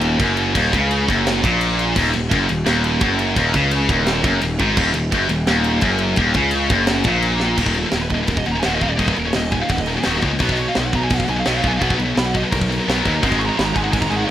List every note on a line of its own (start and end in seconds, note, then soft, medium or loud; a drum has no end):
0.00 0.18 D#1 loud
0.00 0.17 D#2 loud
0.00 ride medium
0.18 0.53 F#1 medium
0.18 0.54 F#2 loud
0.18 kick loud
0.18 ride loud
0.37 ride medium
0.54 0.72 D#1 loud
0.54 0.72 D#2 loud
0.54 kick loud
0.54 ride loud
0.72 1.06 C#2 medium
0.72 1.07 C#3 loud
0.72 kick loud
0.72 ride medium
0.91 ride loud
1.07 1.41 F#1 loud
1.07 1.42 F#2 loud
1.07 kick loud
1.07 ride medium
1.27 snare loud
1.27 ride loud
1.42 1.93 A#1 medium
1.42 1.95 A#2 loud
1.42 kick loud
1.42 ride medium
1.61 ride loud
1.79 ride medium
1.96 2.13 D#1 loud
1.96 2.11 D#2 loud
1.96 kick loud
1.96 crash loud
2.12 2.30 D#1 medium
2.12 2.27 D#2 medium
2.12 ride medium
2.29 2.48 F#1 loud
2.29 2.47 F#2 medium
2.29 kick loud
2.29 ride loud
2.48 2.66 D#1 medium
2.48 2.62 D#2 medium
2.48 ride medium
2.66 2.99 D#1 medium
2.66 3.00 D#2 loud
2.66 snare loud
2.66 ride loud
2.84 ride medium
3.00 3.34 F#1 medium
3.00 3.35 F#2 loud
3.00 kick loud
3.00 ride loud
3.19 ride medium
3.35 3.53 D#1 medium
3.35 3.53 D#2 loud
3.35 kick loud
3.35 ride loud
3.53 3.87 C#2 loud
3.53 3.88 C#3 loud
3.53 kick loud
3.53 ride medium
3.71 ride loud
3.89 4.22 D#1 loud
3.89 4.23 D#2 loud
3.89 kick loud
3.89 ride medium
4.07 snare loud
4.07 ride loud
4.23 4.41 F#1 medium
4.23 4.41 F#2 loud
4.23 kick loud
4.23 ride medium
4.41 4.58 D#1 medium
4.41 4.56 D#2 medium
4.41 ride loud
4.59 4.76 G#1 loud
4.59 4.76 G#2 loud
4.59 kick loud
4.59 ride medium
4.77 4.94 D#1 loud
4.77 4.92 D#2 loud
4.77 kick loud
4.77 crash loud
4.94 5.11 D#1 medium
4.94 5.08 D#2 medium
4.94 ride medium
5.11 5.28 F#1 loud
5.11 5.29 F#2 loud
5.11 kick loud
5.11 ride loud
5.29 5.46 D#1 medium
5.29 5.44 D#2 medium
5.29 ride medium
5.47 5.80 D#1 loud
5.47 5.82 D#2 loud
5.47 snare loud
5.47 ride loud
5.64 ride medium
5.81 6.15 F#1 loud
5.81 6.17 F#2 loud
5.81 kick loud
5.81 ride loud
5.98 ride medium
6.16 6.34 D#1 loud
6.16 6.34 D#2 loud
6.16 kick loud
6.16 ride loud
6.34 6.68 C#2 medium
6.34 6.70 C#3 loud
6.34 kick loud
6.34 ride medium
6.51 ride loud
6.70 7.03 F#1 loud
6.70 7.05 F#2 loud
6.70 kick loud
6.70 ride medium
6.87 snare loud
6.87 ride loud
7.04 7.54 A#1 loud
7.04 7.56 A#2 loud
7.04 kick loud
7.04 ride medium
7.22 ride loud
7.40 snare medium
7.57 7.84 D#1 medium
7.57 7.73 D#2 medium
7.57 7.73 A#2 medium
7.57 7.74 D#3 loud
7.57 kick loud
7.57 crash loud
7.57 crash medium
7.61 7.76 A#2 medium
7.61 7.76 D#3 loud
7.66 kick medium
7.74 7.82 D#2 medium
7.74 7.82 A#2 medium
7.74 crash medium
7.83 7.90 D#2 medium
7.83 7.91 A#2 medium
7.83 7.89 A4 medium
7.89 8.06 D#1 medium
7.89 8.09 D#2 medium
7.89 8.09 A#2 medium
7.89 8.00 A#4 medium
7.89 snare loud
7.89 crash medium
8.02 8.11 B4 medium
8.10 8.24 D#1 medium
8.10 8.17 D#2 medium
8.10 8.16 A#2 medium
8.10 8.20 D#5 loud
8.10 kick medium
8.10 crash medium
8.17 8.26 D#2 medium
8.17 8.27 A#2 medium
8.17 8.28 B4 medium
8.23 8.44 D#2 medium
8.23 8.29 A#2 medium
8.27 8.42 D#1 loud
8.27 8.46 D#2 medium
8.27 8.43 A#2 medium
8.27 8.37 A#4 medium
8.27 kick loud
8.27 crash medium
8.37 8.46 D#5 medium
8.37 kick loud
8.44 8.60 D#1 medium
8.44 8.55 D#2 medium
8.44 8.54 A#2 medium
8.44 8.52 F#5 loud
8.44 crash medium
8.51 8.58 A#5 loud
8.56 8.62 D#2 medium
8.56 8.63 A#2 medium
8.60 8.80 D#2 loud
8.60 8.64 G#5 medium
8.60 snare loud
8.60 crash medium
8.64 8.78 D#1 medium
8.64 8.81 A#2 loud
8.64 8.81 D#3 loud
8.64 8.73 F#5 medium
8.75 8.82 D#5 medium
8.81 8.95 D#1 medium
8.81 8.89 D#2 medium
8.81 8.90 A#2 loud
8.81 8.90 D#3 loud
8.81 8.91 F5 loud
8.81 kick medium
8.81 crash medium
8.91 8.99 D#2 medium
8.91 8.99 A#2 medium
8.91 8.98 D5 medium
8.98 9.12 D#1 medium
8.98 9.16 D#2 medium
8.98 9.16 A#2 loud
8.98 9.17 D#3 loud
8.98 9.07 D#5 loud
8.98 kick loud
8.98 crash medium
9.08 9.17 B4 medium
9.08 kick medium
9.16 9.31 D#1 medium
9.16 9.26 D#2 medium
9.16 9.25 A#2 medium
9.16 9.27 A#4 loud
9.16 crash medium
9.26 9.33 D#2 medium
9.26 9.33 A#2 medium
9.26 9.35 C#5 medium
9.33 9.61 D#1 medium
9.33 9.50 D#2 medium
9.33 9.51 A#2 medium
9.33 9.52 D#5 medium
9.33 snare loud
9.33 crash medium
9.51 9.60 D#2 medium
9.51 9.59 A#2 medium
9.51 9.60 G#5 medium
9.51 kick medium
9.51 crash medium
9.60 9.70 D#2 medium
9.60 9.69 A#2 medium
9.60 9.70 F5 medium
9.69 9.96 D#1 loud
9.69 9.87 D#2 medium
9.69 9.86 A#2 medium
9.69 9.79 F#5 loud
9.69 kick loud
9.69 crash medium
9.78 9.89 D#5 medium
9.78 kick medium
9.86 9.96 D#2 medium
9.86 9.95 A#2 medium
9.86 9.93 A#4 loud
9.86 crash medium
9.96 10.04 D#2 medium
9.96 10.04 A#2 medium
9.96 10.01 F#4 medium
10.01 10.06 G#4 loud
10.01 snare loud
10.01 crash medium
10.05 10.19 D#1 medium
10.05 10.21 D#2 medium
10.05 10.22 A#2 medium
10.05 10.22 D#3 loud
10.05 10.17 F#4 medium
10.21 10.36 C#2 medium
10.21 10.29 D#2 medium
10.21 10.29 A#2 medium
10.21 10.31 D#3 loud
10.21 kick medium
10.21 crash medium
10.30 10.40 D#2 medium
10.30 10.40 A#2 medium
10.39 10.67 B1 loud
10.39 10.56 B2 medium
10.39 10.56 F#3 medium
10.39 10.58 B3 loud
10.39 kick loud
10.39 crash medium
10.49 10.60 D#5 medium
10.49 kick medium
10.57 10.66 B2 medium
10.57 10.66 F#3 medium
10.57 10.67 C#5 medium
10.57 crash medium
10.67 10.74 B2 medium
10.67 10.74 F#3 medium
10.67 10.76 F5 medium
10.75 10.90 B1 medium
10.75 10.92 B2 medium
10.75 10.92 F#3 medium
10.75 10.86 D#5 medium
10.75 snare loud
10.75 crash medium
10.86 10.94 F#5 medium
10.93 11.07 B1 loud
10.93 11.01 B2 medium
10.93 11.01 F#3 medium
10.93 11.03 A#5 medium
10.93 kick medium
10.93 crash medium
11.02 11.10 B2 medium
11.02 11.10 F#3 medium
11.02 11.14 G#5 medium
11.10 11.24 B1 medium
11.10 11.27 B2 medium
11.10 11.27 F#3 medium
11.10 11.18 F#5 loud
11.10 kick loud
11.10 crash medium
11.19 11.25 F5 medium
11.19 kick medium
11.25 11.42 B1 medium
11.25 11.36 B2 medium
11.25 11.35 F#3 medium
11.25 11.30 F#5 medium
11.25 crash medium
11.30 11.38 G#5 loud
11.37 11.45 B2 medium
11.37 11.46 F#3 medium
11.37 11.47 F5 medium
11.45 11.60 B1 medium
11.45 11.62 B2 loud
11.45 11.62 F#3 loud
11.45 11.62 B3 medium
11.45 11.57 D#5 medium
11.45 snare loud
11.45 crash medium
11.57 11.65 F5 medium
11.63 11.78 B1 medium
11.63 11.71 B2 medium
11.63 11.71 F#3 medium
11.63 11.72 B3 loud
11.63 kick loud
11.63 crash medium
11.68 11.77 G#5 loud
11.72 11.79 B2 medium
11.72 11.80 F#3 medium
11.77 11.94 B1 medium
11.77 11.98 B2 medium
11.77 11.82 F5 medium
11.77 crash medium
11.81 11.98 F#3 loud
11.81 11.98 B3 loud
11.81 11.91 F#5 loud
11.81 kick loud
11.90 11.98 B4 medium
11.90 kick loud
11.99 12.12 B1 medium
11.99 12.07 B2 medium
11.99 12.07 F#3 medium
11.99 crash medium
12.08 12.17 B2 medium
12.08 12.17 F#3 medium
12.17 12.43 B1 medium
12.17 12.34 B2 medium
12.17 12.34 F#3 medium
12.17 12.26 B5 loud
12.17 snare loud
12.17 crash medium
12.25 12.34 F#5 medium
12.35 12.43 B2 medium
12.35 12.42 F#3 medium
12.35 12.44 D#5 medium
12.35 kick medium
12.35 crash medium
12.43 12.51 B2 medium
12.43 12.52 F#3 medium
12.43 12.50 B4 medium
12.50 12.78 B1 medium
12.50 12.68 B2 medium
12.50 12.69 F#3 medium
12.50 13.22 A#4 medium
12.50 kick loud
12.50 crash medium
12.61 kick medium
12.70 12.78 B2 medium
12.70 12.77 F#3 medium
12.70 crash medium
12.78 12.84 B2 medium
12.78 12.85 F#3 medium
12.85 13.01 B1 medium
12.85 13.01 B2 loud
12.85 13.03 F#3 loud
12.85 13.03 B3 medium
12.85 crash medium
12.90 snare loud
13.03 13.19 D#2 loud
13.03 13.12 B2 medium
13.03 13.11 F#3 medium
13.03 13.13 B3 medium
13.03 kick medium
13.03 crash medium
13.07 13.14 B2 medium
13.12 13.21 B2 medium
13.12 13.21 F#3 medium
13.21 13.49 G#1 loud
13.21 13.38 G#2 medium
13.21 13.37 D#3 loud
13.21 13.39 G#3 loud
13.21 kick loud
13.21 crash medium
13.32 kick medium
13.39 13.47 G#2 medium
13.39 13.46 D#3 medium
13.39 13.57 G#3 medium
13.39 13.45 C#6 loud
13.39 crash medium
13.46 13.55 G#2 medium
13.46 13.55 D#3 medium
13.46 13.56 A#5 medium
13.56 13.72 G#1 medium
13.56 13.72 G#2 medium
13.56 13.72 D#3 medium
13.56 13.76 G#3 loud
13.56 13.65 B5 loud
13.56 snare loud
13.56 crash medium
13.65 13.75 A#5 medium
13.73 13.89 G#1 medium
13.73 13.82 G#2 medium
13.73 13.81 D#3 medium
13.73 13.93 G#3 medium
13.73 13.83 G#5 medium
13.73 kick medium
13.73 crash medium
13.82 13.89 G#2 medium
13.82 13.90 D#3 medium
13.82 13.92 F#5 medium
13.90 14.06 G#1 medium
13.90 14.07 G#2 medium
13.90 14.06 D#3 medium
13.90 14.10 G#3 medium
13.90 14.02 G#5 loud
13.90 kick loud
13.90 crash medium
14.01 14.10 A#5 medium
14.01 kick medium
14.08 14.24 G#1 medium
14.08 14.17 G#2 medium
14.08 14.16 D#3 medium
14.08 14.28 G#3 loud
14.08 14.16 G#5 loud
14.08 crash medium
14.16 14.24 G#2 medium
14.16 14.25 D#3 medium
14.16 14.24 F#5 loud
14.24 14.30 G#2 loud
14.24 14.30 D#3 medium
14.24 14.30 G#3 medium
14.24 14.30 D#5 medium
14.24 14.29 F5 medium